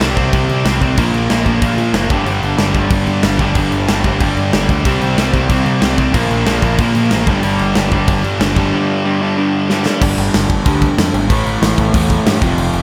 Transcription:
Already playing: C3 G3 C4
0.00 C2 C3 G3 C4, snare, crash
0.16 C2 C3 G3 C4, kick, crash
0.33 C2 C3 G3 C4, kick, crash
0.49 C3, crash
0.65 C2 C3 G3 C4, snare, crash
0.81 C2 C3 G3 C4, kick, crash
0.98 A#1 A#2 F3 A#3, kick, crash
1.14 A#1, crash
1.30 A#1 A#2 F3 A#3, snare, crash
1.46 A#1 A#2 F3 A#3, kick, crash
1.61 A#1 A#2 F3 A#3, kick, crash
1.78 A#2, crash
1.93 F#1 A#2 F3 A#3, snare, crash
2.10 G1 G2 D3 G3, kick, crash
2.25 G1 G2 D3 G3, crash
2.42 G1, crash
2.58 G1 G2 D3 G3, snare, crash
2.74 G1 G2 D3 G3, kick, crash
2.90 G1 G2 D3 G3, kick, crash
3.07 G2, crash
3.23 G1 G2 D3 G3, snare, crash
3.39 G1 G2 D3 G3, kick, crash
3.55 G1 G2 D3 G3, kick, crash
3.72 G1, crash
3.88 G1 G2 D3 G3, snare, crash
4.04 G1 G2 D3 G3, kick, crash
4.21 G1 G2 D3 G3, kick, crash
4.37 G2, crash
4.53 G1 G2 D3 G3, snare, crash
4.69 D2 G2 D3 G3, kick, crash
4.85 C2 C3 G3 C4, kick, crash
5.01 C2, crash
5.17 C2 C3 G3 C4, snare, crash
5.33 C2 C3 G3 C4, kick, crash
5.49 C2 C3 G3 C4, kick, crash
5.66 C3, crash
5.81 C2 C3 G3 C4, snare, crash
5.97 C2 C3 G3 C4, kick, crash
6.13 A#1 A#2 F3 A#3, kick, crash
6.30 A#1, crash
6.46 A#1 A#2 F3 A#3, snare, crash
6.62 A#1 A#2 F3 A#3, kick, crash
6.78 A#1 A#2 F3 A#3, kick, crash
6.95 A#2, crash
7.11 A1 A#2 F3 A#3, snare, crash
7.27 G1 G2 D3 G3, kick, crash
7.43 G1 G2 D3 G3, crash
7.59 G1, crash
7.75 G1 G2 D3 G3, snare, crash
7.91 G1 G2 D3 G3, kick, crash
8.08 G1 G2 D3 G3, kick, crash
8.24 G2, crash
8.39 G1 G2 D3 G3, snare, crash
8.56 G1 G2 D3 G3, kick, crash
8.73 G2 D3 G3
9.05 G2 D3 G3
9.20 G2 D3 G3
9.37 G2 D3 G3
9.69 G2 D3 G3, snare
9.85 G2 D3 G3, snare
10.01 G1 G2 D3 G3, kick, crash
10.18 G1, crash
10.34 G1, snare, crash
10.50 G1, kick, crash
10.65 D2 G2 D3 G3, kick, crash
10.82 kick, crash
10.98 F2, snare, crash
11.14 G#1 G2 D3 G3, crash
11.29 A1 A2 E3 A3, kick, crash
11.46 A1, crash
11.62 A1, snare, crash
11.78 A1, kick, crash
11.93 E2 A2 E3 A3, kick, crash
12.10 kick, crash
12.26 G2, snare, crash
12.41 F1 F2 C3 F3, kick, crash
12.58 F1, crash
12.73 F1, crash

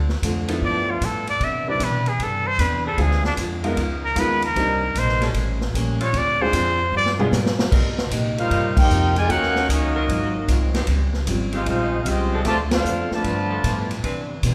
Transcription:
Already playing: D2 A3 C4 F4
0.09 snare
0.22 F2 D3 A3 C4 F4, kick, hi-hat pedal, ride
0.48 F3 B3 D4 E4 A4, ride
0.61 G2 F3 B3 E4 D5, kick
0.91 F4
1.01 G2 A2 F3 B3 E4, kick, hi-hat pedal, ride
1.05 A4
1.27 D5, ride
1.40 C3 E3 B3 D4 E5, kick, ride
1.68 G3 C4 D4 E4 B4 D5
1.80 B2 C3 E3 B3 D4, kick, hi-hat pedal, ride
1.84 B4
2.06 G#4, ride
2.19 G2 C3 E3 B3 D4, kick, ride
2.23 A4
2.47 C5
2.58 E2 C3 E3 B3 D4 B4, kick, hi-hat pedal, ride
2.85 F3 C4 D4 G#4 A4
2.98 D2 D3 G#3 C4 D4 F4 G#4, kick, ride
3.11 snare
3.24 D4, snare
3.37 F2 D3 G#3 C4 F4, kick, hi-hat pedal, ride
3.63 F3 G#3 B3 D#4 F4 A#4, ride
3.76 C#2 C#3 B3 F4 A#4, kick, ride
4.04 A#4
4.16 D#2 C#3 G#3 B3 D#4 F4 A#4 B4, kick, hi-hat pedal, ride
4.42 A#4, ride
4.55 C2 C3 G3 A#3 C4 D4 D#4 A#4, kick, ride
4.95 A#1 C3 G3 A#3 D#4 C5, kick, hi-hat pedal, ride
5.09 snare
5.21 G3 A#3 C#4 A4, snare, ride
5.34 A1 A2 G3 A#3 C#4, kick, ride
5.61 snare
5.74 A#1 A2 G3 A#3 C#4, kick, hi-hat pedal, ride
6.00 F3 C4 D4 F4 C#5, ride
6.13 D2 D3 C4 F4 G#4, kick, ride
6.18 D5
6.41 G#3 C4 D4 F4 G#4 C5
6.53 F2 D3 F3 C4 D4 F4 G#4, kick, hi-hat pedal, ride
6.92 G2 G3 B3 F4 G#4
6.97 D5
7.06 snare
7.19 G3 G#3 B3 D4 F4 G#4, mid tom
7.32 G#2 G3 B3 F4 G#4, snare, hi-hat pedal
7.46 snare
7.59 snare
7.71 C3 G3 A#3 C4 D#4 G4 A#4, kick, crash
7.98 snare
8.10 A#2 C3 A#3 D#4 G4, kick, hi-hat pedal, ride
8.38 G3 A#3 D#4 F4 A#4 C5 F5, ride
8.50 G2 C3 A#3 D#4 G4, kick, ride
8.77 A#3 D#4 G4 A#4 C5 G5, kick, crash
8.90 F2 C3 A#3 D#4 G4, hi-hat pedal
9.16 G#3 F4 A#4 D5 G#5, ride
9.29 D#2 D#3 A#3 C#4 D#4 F#4 A#4 C#5 F#5, kick, ride
9.43 snare
9.56 snare
9.68 C#2 D#3 F#3 A#3 C#4 D#4 F#4 A#4 D#5, kick, hi-hat pedal, ride
9.96 F#3 C4 F4 A#4
10.08 G#1 G#2 F#3 C4 F4, kick, ride
10.48 C2 G#2 F#3 C4 F4, kick, hi-hat pedal, ride
10.74 F3 C4 D#4 G4, snare, ride
10.87 C#2 C#3 G3 C4 F4, kick, ride
11.14 snare
11.27 G#1 C#3 G3 C4 F4, kick, hi-hat pedal, ride
11.53 F3 G#3 C4 D#4 F4 G4 G#4 C5 F5, ride
11.66 A#1 C#3 G3 G#3 C4 D#4 F4 G#4 C5 F5, kick, ride
11.70 F4
12.03 C2 C#3 G3 G#3 C4 G4 F5, kick, hi-hat pedal, ride
12.07 F4 C5 D#5 G5
12.33 F3 C4 D4 A4
12.44 D2 C3 D3 F3 A3 C4 F4 C5 D5 A5, kick, snare, ride
12.71 A3 C4 D4 F4 A4 F5, snare, ride
12.75 C5
12.84 F2 D3 A3 C4 F4, hi-hat pedal
13.11 D3 F3 A3 F4 B4 D5 A5, muted upright bass stroke, snare
13.24 G2 F3 B3 E4, kick, ride
13.50 F3 B3 E4 A4
13.64 G2 A2 F3 B3 E4, kick, hi-hat pedal, ride
13.91 ride
14.03 C3 E3 B3 C4 D4 B4, kick, ride
14.43 B2 C3 E3 B3 D4, kick, hi-hat pedal, ride

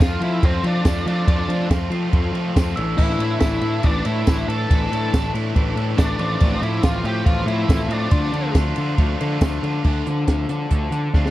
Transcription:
Already playing: F2 F4 A4 C5 A5 F6
0.00 F2 F3 A3 C4 F4, kick, snare, ride, tambourine
0.20 F2 C3 F3 A3 C4 E4 F4, ride
0.41 F2 F3 A3 C4 F4, kick, ride
0.63 F2 C3 F3 A3 C4 D4 F4, ride
0.85 F2 F3 A3 C4 F4, kick, snare, ride, tambourine
1.06 F3 A3 C4 D4 F4, ride
1.10 F3
1.27 F2 C3 F3 A3 C4 F4, kick, ride
1.48 F3 A3 C4 F4, ride
1.70 F2 F3 A3 C4 F4, kick, snare, ride, tambourine
1.90 F3 A3 C4 F4, ride
1.94 F2 C3
2.12 F2 F3 A3 C4 F4, kick, ride
2.32 C3 F3 A3 C4 F4, ride
2.36 F2
2.56 F2 F3 A3 C4 F4, kick, snare, ride, tambourine
2.68 snare
2.75 A1 A2 E3 A3 D4 E4 D5 E6, ride
2.97 A1 A2 E3 A3 D4 E4, kick, crash
3.10 snare
3.19 A2 A3 D4 E4, ride
3.40 A1 A2 E3 A3 D4 E4, kick, snare, ride, tambourine
3.61 A2 A3 D4 E4, ride
3.65 A2 E3
3.83 A1 A2 E3 A3 D4, kick, ride
3.87 E4
4.05 A2 A3 D4 E4, ride
4.09 A2 E3
4.26 A1 E3 A3 D4 E4, kick, snare, ride, tambourine
4.48 A2 D4 E4 A4, ride
4.52 A3
4.69 A1 A2 E3 A3 D4 E4, kick, ride
4.82 snare
4.91 A2 A3 D4 E4, ride
5.13 A1 A2 E3 A3 D4 E4, kick, snare, ride, tambourine
5.34 A2 E3 A3 D4 E4, ride
5.54 A1 A2 E3 A3 D4 E4, kick, ride
5.76 A2 E3 A3 D4 E4, ride
5.96 A1 E3 A3 D4 E4, kick, snare, ride, tambourine
6.18 A1 A2 F3 A3 C4 D4 F4 C5 D6, ride
6.40 A1 A2 F3 A3 C4 F4, kick, ride
6.52 snare
6.62 A2 A3 C4 E4 F4, ride
6.83 A1 A2 F3 A3 C4, kick, snare, ride, tambourine
6.87 F4
7.04 A2 F3 A3 C4 F4 G4, ride
7.08 A2
7.25 A1 A2 F3 A3 C4, kick, ride
7.29 F4
7.46 A2 F3 A3 C4 E4 F4, ride
7.50 A2
7.68 A1 F3 A3 C4 F4, kick, snare, ride, tambourine
7.88 A2 C4 D4 F4, ride
7.93 A3
8.11 D2 D3 A3 D4 F4 D5 A5 C6, kick, ride
8.24 snare
8.33 D3 A3 D4 F4, ride
8.55 D2 D3 A3 D4, kick, snare, ride, tambourine
8.59 F4
8.76 D3 A3 D4 F4, ride
8.80 D3
8.98 D2 D3 A3 D4 F4, kick, ride
9.21 D3 A3 D4 F4, ride
9.41 D2 D3 A3 D4, kick, snare, ride, tambourine
9.45 F4
9.53 snare
9.63 D3 A3 D4 F4, ride
9.84 D2 D3 D4 F4, kick, crash
10.06 D3 F3 D4, closed hi-hat
10.27 D2 D3 F3 D4, kick, snare, closed hi-hat
10.49 D3 D4, closed hi-hat
10.71 D2 D3 D4 A4, kick, closed hi-hat
10.90 D3 D4, closed hi-hat
11.14 D2 D3 F3 D4 F4, kick, snare
11.26 snare

